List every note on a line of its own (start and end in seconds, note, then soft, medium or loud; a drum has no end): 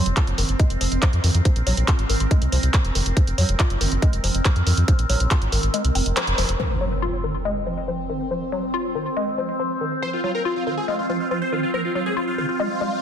0.00 6.58 C4 medium
0.00 6.62 A#4 medium
0.06 0.12 F1 medium
0.06 closed hi-hat soft
0.17 0.22 F4 loud
0.17 kick loud
0.17 clap loud
0.17 closed hi-hat medium
0.27 0.34 F#1 medium
0.27 closed hi-hat soft
0.38 0.44 F#1 loud
0.38 0.43 D#3 medium
0.38 open hi-hat medium
0.49 0.55 F#1 medium
0.49 closed hi-hat soft
0.59 0.67 G#3 medium
0.59 kick loud
0.59 closed hi-hat medium
0.70 0.76 F1 medium
0.70 closed hi-hat medium
0.81 0.87 F1 medium
0.81 0.86 F3 medium
0.81 open hi-hat loud
0.92 0.98 F1 medium
0.92 closed hi-hat medium
1.02 1.05 F3 medium
1.02 kick loud
1.02 clap loud
1.02 closed hi-hat medium
1.13 1.19 F2 medium
1.13 closed hi-hat medium
1.24 1.30 F2 loud
1.24 1.29 D#3 medium
1.24 open hi-hat medium
1.35 1.41 F2 medium
1.35 closed hi-hat medium
1.45 1.50 F3 medium
1.45 kick loud
1.45 closed hi-hat medium
1.56 1.62 A#1 medium
1.56 closed hi-hat medium
1.67 1.73 A#1 loud
1.67 1.74 F#3 loud
1.67 open hi-hat loud
1.77 1.84 A#1 medium
1.77 closed hi-hat medium
1.88 1.93 F4 loud
1.88 kick loud
1.88 clap loud
1.88 closed hi-hat loud
1.99 2.05 G#1 medium
1.99 closed hi-hat medium
2.10 2.16 G#1 loud
2.10 2.14 D#3 medium
2.10 open hi-hat medium
2.20 2.26 G#1 medium
2.20 closed hi-hat soft
2.31 2.38 G#3 loud
2.31 kick loud
2.31 closed hi-hat medium
2.42 2.48 C2 medium
2.42 closed hi-hat medium
2.52 2.59 C2 loud
2.52 2.57 F3 medium
2.52 open hi-hat loud
2.63 2.69 C2 medium
2.63 closed hi-hat medium
2.74 2.77 F3 medium
2.74 kick loud
2.74 clap loud
2.74 closed hi-hat loud
2.85 2.91 F1 medium
2.85 closed hi-hat medium
2.95 3.01 F1 loud
2.95 3.00 D#3 medium
2.95 open hi-hat medium
3.06 3.12 F1 medium
3.06 closed hi-hat medium
3.17 3.22 F3 medium
3.17 kick loud
3.17 closed hi-hat loud
3.27 3.34 F1 medium
3.27 closed hi-hat medium
3.38 3.44 F2 loud
3.38 3.45 F#3 loud
3.38 open hi-hat loud
3.49 3.55 F1 medium
3.49 closed hi-hat medium
3.60 3.64 F4 loud
3.60 kick loud
3.60 clap loud
3.60 closed hi-hat loud
3.70 3.76 F#1 medium
3.70 closed hi-hat medium
3.81 3.87 F#1 loud
3.81 3.86 D#3 medium
3.81 open hi-hat medium
3.92 3.98 F#1 medium
3.92 closed hi-hat soft
4.02 4.10 G#3 loud
4.02 kick loud
4.02 closed hi-hat medium
4.13 4.19 F1 medium
4.13 closed hi-hat medium
4.24 4.30 F1 medium
4.24 4.29 F3 medium
4.24 open hi-hat loud
4.34 4.41 F1 medium
4.34 closed hi-hat medium
4.45 4.48 F3 medium
4.45 kick loud
4.45 clap loud
4.45 closed hi-hat loud
4.56 4.62 F2 medium
4.56 closed hi-hat medium
4.67 4.73 F2 loud
4.67 4.72 D#3 medium
4.67 open hi-hat medium
4.77 4.84 F2 medium
4.77 closed hi-hat medium
4.88 4.93 F3 medium
4.88 kick loud
4.88 closed hi-hat medium
4.99 5.05 A#1 medium
4.99 closed hi-hat medium
5.10 5.16 A#1 loud
5.10 5.17 F#3 loud
5.10 open hi-hat loud
5.20 5.26 A#1 loud
5.20 closed hi-hat medium
5.31 5.36 F4 loud
5.31 kick loud
5.31 clap loud
5.31 closed hi-hat loud
5.42 5.48 G#1 medium
5.42 closed hi-hat medium
5.52 5.59 G#1 loud
5.52 5.57 D#3 medium
5.52 open hi-hat medium
5.63 5.69 G#1 medium
5.63 closed hi-hat soft
5.74 5.81 G#3 loud
5.74 closed hi-hat loud
5.85 5.91 C2 medium
5.85 closed hi-hat medium
5.95 6.01 F1 loud
5.95 6.00 C4 medium
5.95 open hi-hat loud
6.06 6.12 F1 loud
6.06 closed hi-hat medium
6.17 6.22 F3 medium
6.17 clap loud
6.17 closed hi-hat loud
6.27 6.34 F1 medium
6.27 closed hi-hat medium
6.38 6.44 F1 loud
6.38 6.45 F3 loud
6.38 open hi-hat medium
6.49 6.55 F1 loud
6.49 closed hi-hat medium
6.60 6.64 F3 medium
6.60 13.02 C4 medium
6.60 13.02 C5 medium
6.60 impact medium
6.81 6.88 F#3 loud
7.02 7.07 F4 medium
7.24 7.29 D#3 medium
7.45 7.53 G#3 loud
7.67 7.72 F3 medium
7.88 7.91 F3 medium
8.10 8.14 D#3 medium
8.31 8.36 F3 medium
8.52 8.60 F#3 loud
8.74 8.79 F4 loud
8.95 9.00 D#3 medium
9.17 9.24 G#3 loud
9.38 9.43 F3 medium
9.60 9.62 F3 medium
9.81 9.86 D#3 medium
10.02 10.07 F3 medium
10.02 10.10 C5 loud
10.13 10.21 F4 medium
10.24 10.31 F#3 loud
10.24 10.31 F4 medium
10.35 10.42 A#4 medium
10.45 10.50 F4 loud
10.45 10.53 F4 medium
10.56 10.63 F4 medium
10.67 10.72 D#3 medium
10.67 10.74 F4 medium
10.77 10.85 G#4 medium
10.88 10.95 G#3 loud
10.88 10.96 F4 medium
10.99 11.06 F4 medium
11.10 11.14 F3 medium
11.10 11.17 F4 medium
11.20 11.28 F4 medium
11.31 11.34 F3 medium
11.31 11.38 F4 medium
11.42 11.49 C5 medium
11.52 11.57 D#3 medium
11.52 11.60 F4 medium
11.63 11.71 F4 medium
11.74 11.79 F3 medium
11.74 11.81 A#4 medium
11.85 11.92 F4 medium
11.95 12.03 F#3 loud
11.95 12.03 F4 medium
12.06 12.13 G#4 loud
12.17 12.22 F4 loud
12.17 12.24 F4 medium
12.27 12.35 F4 medium
12.38 12.43 D#3 medium
12.38 12.46 F4 medium
12.49 13.02 F4 loud
12.60 12.67 G#3 loud
12.81 12.84 G#3 loud